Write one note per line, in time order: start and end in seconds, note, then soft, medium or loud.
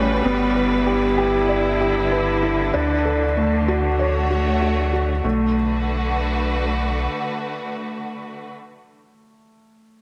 0.00 0.21 A1 medium
0.00 0.25 C#3 medium
0.00 2.74 G3 medium
0.00 0.26 A3 medium
0.00 0.11 C#4 medium
0.00 0.27 E4 medium
0.00 0.27 F#4 medium
0.00 1.25 F#4 medium
0.00 0.26 G4 medium
0.00 3.75 B4 medium
0.24 2.71 G1 medium
0.24 5.24 D3 medium
0.24 0.54 B3 medium
0.53 3.75 E4 medium
0.53 0.73 B4 medium
0.87 1.05 G4 medium
1.18 1.36 G4 medium
1.49 1.79 D5 medium
1.80 2.10 G4 medium
2.12 2.30 B4 medium
2.43 2.61 E4 medium
2.74 5.21 D2 medium
2.74 3.04 D4 medium
3.05 3.23 A4 medium
3.37 3.66 A3 medium
3.67 5.25 A3 medium
3.67 3.86 F#4 medium
3.87 5.25 F#4 medium
3.87 5.24 C#5 medium
3.99 4.29 C#5 medium
4.30 4.48 F#4 medium
4.61 4.91 F#4 medium
4.93 5.11 F#4 medium
5.24 7.08 B1 medium
5.24 8.51 D3 medium
5.24 5.53 A3 medium
5.34 8.51 A3 medium
5.44 8.51 F#4 medium
5.53 8.50 B4 medium